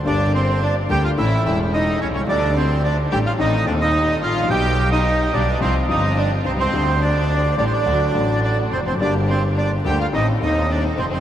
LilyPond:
<<
  \new Staff \with { instrumentName = "Bandoneon" } { \time 4/4 \key d \phrygian \tempo 4 = 107 << { d''8 c''8 d''8 g''16 f''16 e''8 e''8 ees''8 cis''16 cis''16 | d''8 c''8 d''8 g''16 f''16 ees''8 d''16 ees''8. f''8 | g''8. ees''8. d''8 c''8 ees''8 d''8 c''16 c''16~ | c''8 d''4 d''32 c''32 d''4~ d''16 d''8 c''16 c''16 |
d''8 c''8 d''8 g''16 f''16 ees''8 ees''8 d''8 c''16 c''16 | } \\ { d'8 c'8 d'8 g'16 f'16 e'8 e'8 ees'8 cis'16 cis'16 | d'8 c'8 d'8 g'16 f'16 ees'8 d'16 ees'8. f'8 | g'8. ees'8. d'8 c'8 ees'8 d'8 c'16 c'16~ | c'8 d'4 d'16 d'4~ d'16 d'8 c'16 c'16 |
d'8 c'8 d'8 g'16 f'16 ees'8 ees'8 d'8 c'16 c'16 | } >> }
  \new Staff \with { instrumentName = "String section" } { \time 4/4 \key d \phrygian <bes d' g'>4. <bes d' g'>8 <a cis' e'>8 <a cis' e'>4. | <a d' g'>4. <a d' g'>8 <c' ees' a'>8 <c' ees' a'>4. | <b g'>4. <b d' g'>8 <c' f' g'>8 <c' f' g'>4. | <a d' g'>4. <a d' g'>8 <a d' fis'>8 <a d' fis'>4. |
<bes d' g'>4. <bes d' g'>8 <c' ees' a'>8 <c' ees' a'>4. | }
  \new Staff \with { instrumentName = "Violin section" } { \time 4/4 \key d \phrygian d'8 c'8 d'8 g'16 f'16 e'8 e'8 ees'8 cis'16 cis'16 | d'8 c'8 d'8 g'16 f'16 ees'8 d'16 ees'8. f'8 | g'8. ees'8. d'8 c'8 ees'8 d'8 c'16 c'16~ | c'8 d'4 d'32 c'32 d'4~ d'16 d'8 c'16 c'16 |
d'8 c'8 d'8 g'16 f'16 ees'8 ees'8 d'8 c'16 c'16 | }
  \new Staff \with { instrumentName = "Grand piano" } { \clef bass \time 4/4 \key d \phrygian << { <g,, g, d g bes g'>4. <d, d g bes g'>8 <a,, a, e a cis' a'>8 <e,, e, e a cis' a'>4. | <d, d g a d' a'>4. <a,, a, g a d' a'>8 <a,, a, ees a c' a'>8 <ees,, ees, ees a c' a'>4. | <b,, b, g b g'>4. <b,, b, d g b g'>8 <c, c f g c' g'>8 <g,, g, f g c' g'>4. | <d, d g a g'>4. <a,, a, d g a g'>8 <d, d fis a fis'>8 <a,, a, d fis a fis'>4. |
<g,, g, d g bes g'>4. <d, d g bes g'>8 <a,, a, ees a c' a'>8 <ees,, ees, ees a c' a'>4. | } \\ { r2. r8 r32 b,,32 c,32 cis,32 | r2. r8 r32 aes,,32 a,,32 bes,,32 | r2. r8 r32 b,,32 c,32 cis,32 | r2. r8 r32 e,32 f,32 fis,32 |
r2. r8 r32 e,32 f,32 r32 | } >> }
  \new Staff \with { instrumentName = "Double bass" } { \clef bass \time 4/4 \key d \phrygian g,,4. d,8 a,,8 e,,4 c,8 | d,4. a,,8 a,,8 ees,4 a,,8 | b,,4. b,,8 c,8 g,,4 c,8 | d,4. a,,8 d,8 a,,4 f,,8 |
g,,4. d,8 a,,8 ees,4 f,,8 | }
>>